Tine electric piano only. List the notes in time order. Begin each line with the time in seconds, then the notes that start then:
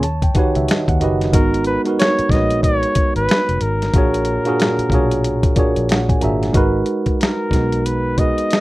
0.04 A5
0.23 G5
0.34 D#3 D#4 F#4 G4 B4 F#5
0.39 C#5
0.56 E5
0.69 D#5
0.89 F#5
1.00 D#3 D#4 F#4 G4 B4 D#5
1.04 D#5
1.32 G#3 D#4 F#4 A#4
1.37 B3
1.85 G#3 D#4 F#4 A#4
1.89 B4
2.30 G#3 D#4 F#4 B4
2.35 C#5
3.93 A#2 A#3 D4 F#4 G#4
3.98 C#5
4.45 A#2 A#3 D4 F#4 G#4
4.49 A#4
4.90 A#2 A#3 D4 F#4 G#4
4.95 C#5
5.55 A#2 A#3 D4 F#4 G#4 D5
5.59 C#5
5.91 F#5
6.09 G#5
6.20 A#2 A#3 D4 F#4 G#4 A#5
6.24 E5
6.53 G#3 D#4 F#4 A#4
6.57 B4
7.51 G#3 D#4 F#4 A#4
7.56 B3
8.16 G#3 D#4 F#4 G#4
8.21 B4